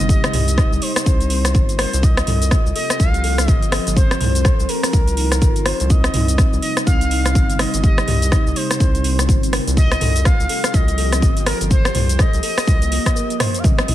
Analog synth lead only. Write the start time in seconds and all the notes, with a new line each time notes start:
0.10 D#5
0.82 C5
1.79 C5
2.03 D#5
2.76 D#5
3.00 F5
3.51 D#5
3.72 D#5
3.96 C5
4.69 A#4
5.66 C5
5.90 D#5
6.62 D#5
6.86 F5
7.59 D#5
7.83 D#5
8.56 C5
9.77 D#5
10.25 F5
10.74 D#5
11.47 A#4
11.71 C5
12.20 D#5
12.44 D#5
13.40 C5
13.59 F5
13.64 D#5